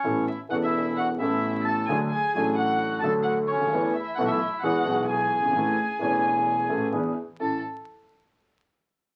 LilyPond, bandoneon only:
\new Staff \with { instrumentName = "Bandoneon" } { \time 4/4 \key a \major \tempo 4 = 131 <cis' cis''>8 <e' e''>8 <fis' fis''>16 <e' e''>8. <fis' fis''>8 <e' e''>4 <a' a''>8 | <gis' gis''>8 <gis' gis''>4 <fis' fis''>4 <a' a''>8 <fis' fis''>8 <cis' cis''>8~ | <cis' cis''>8 <e' e''>8 <fis' fis''>16 <e' e''>8. <fis' fis''>4 <gis' gis''>4~ | <gis' gis''>2. r4 |
a''8 r2. r8 | }